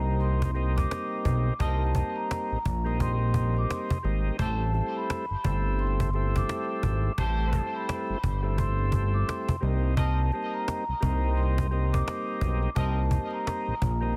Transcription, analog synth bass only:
0.00 0.87 C2 loud
1.25 1.51 B1 medium
1.60 2.02 C2 loud
2.52 2.57 A#1 soft
2.66 3.66 A#1 loud
4.04 4.31 G#1 medium
4.39 4.82 A1 loud
5.31 5.36 G1 soft
5.45 6.45 G1 medium
6.83 7.09 G#1 medium
7.18 7.61 A1 loud
8.10 8.15 G1 soft
8.23 9.24 G1 loud
9.62 10.31 C2 loud
10.89 10.94 C2 soft
11.03 12.03 C2 loud
12.41 12.68 B1 medium
12.76 13.19 C2 loud
13.68 13.73 A#1 soft
13.82 14.17 A#1 loud

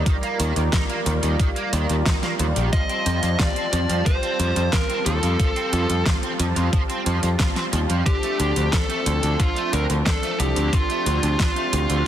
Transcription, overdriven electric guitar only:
0.06 0.15 D#3 medium
0.23 0.35 A#3 medium
0.40 0.52 D#3 medium
0.56 0.61 D#3 medium
0.73 0.81 D#4 medium
0.89 0.98 A#3 medium
1.06 1.11 D#3 medium
1.23 1.35 D#3 medium
1.39 1.48 D#3 medium
1.56 1.69 A#3 medium
1.73 1.85 D#3 medium
1.90 1.95 D#3 medium
2.06 2.15 D#4 medium
2.23 2.31 A#3 medium
2.40 2.45 D#3 medium
2.56 2.69 D#3 medium
2.73 2.81 F3 medium
2.89 3.02 C4 medium
3.06 3.19 F3 medium
3.23 3.28 F3 medium
3.40 3.48 F4 medium
3.56 3.65 C4 medium
3.73 3.78 F3 medium
3.89 4.02 F3 medium
4.06 4.15 F3 medium
4.23 4.35 C4 medium
4.40 4.52 F3 medium
4.56 4.61 F3 medium
4.73 4.81 F4 medium
4.90 4.98 C4 medium
5.06 5.11 F3 medium
5.23 5.35 F3 medium
5.39 5.48 F3 medium
5.56 5.69 C4 medium
5.73 5.85 F3 medium
5.90 5.95 F3 medium
6.06 6.15 F4 medium
6.23 6.31 C4 medium
6.40 6.45 F3 medium
6.56 6.69 F3 medium
6.73 6.81 F3 medium
6.90 7.02 C4 medium
7.06 7.19 F3 medium
7.23 7.28 F3 medium
7.39 7.48 F4 medium
7.56 7.65 C4 medium
7.73 7.78 F3 medium
7.89 8.02 F3 medium
8.06 8.15 D3 medium
8.23 8.35 A3 medium
8.39 8.52 D3 medium
8.56 8.61 D3 medium
8.73 8.81 D4 medium
8.90 8.98 A3 medium
9.06 9.11 D3 medium
9.23 9.35 D3 medium
9.40 9.48 D3 medium
9.56 9.69 A3 medium
9.73 9.85 D3 medium
9.90 9.95 D3 medium
10.06 10.15 D4 medium
10.23 10.31 A3 medium
10.40 10.45 D3 medium
10.56 10.69 D3 medium
10.73 10.81 D3 medium
10.90 11.02 A3 medium
11.06 11.19 D3 medium
11.23 11.28 D3 medium
11.40 11.48 D4 medium
11.56 11.65 A3 medium
11.73 11.78 D3 medium
11.89 12.02 D3 medium

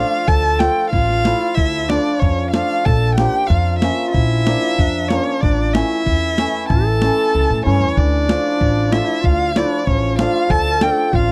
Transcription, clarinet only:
0.00 0.29 F4 medium
0.28 0.91 A4 loud
0.92 1.37 F4 medium
1.40 1.58 F4 medium
1.56 1.90 E4 medium
1.88 2.22 D4 medium
2.21 2.55 C#4 medium
2.54 2.87 F4 medium
2.86 3.18 A4 loud
3.18 3.51 G4 medium
3.49 3.82 F4 medium
4.07 4.15 F4 medium
4.14 4.80 E4 medium
4.79 5.11 D4 medium
5.11 5.41 C#4 medium
5.43 5.77 D4 medium
5.76 6.72 E4 medium
6.71 7.64 A4 loud
7.64 7.97 C#4 medium
7.96 8.93 D4 medium
8.91 9.01 E4 medium
8.99 9.07 F4 medium
9.05 9.23 E4 medium
9.22 9.55 F4 medium
9.53 9.85 D4 medium
9.85 10.15 C#4 medium
10.18 10.52 F4 medium
10.50 11.14 A4 loud
11.13 11.32 F4 medium

